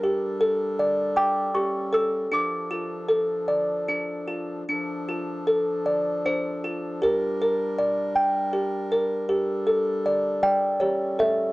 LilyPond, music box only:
\new Staff \with { instrumentName = "Music box" } { \time 3/4 \key d \minor \tempo 4 = 78 << { r4. d'''8 cis'''8 e'''8 | d'''2 r4 | r2 c''4 | bes'4 r2 |
r4. d''8 cis''8 e''8 | } \\ { g'8 a'8 d''8 g''8 g'8 a'8 | d'8 f'8 a'8 d''8 d'8 f'8 | d'8 f'8 a'8 d''8 d'8 f'8 | g'8 bes'8 d''8 g''8 g'8 bes'8 |
g'8 a'8 d''8 g''8 g'8 a'8 | } >> }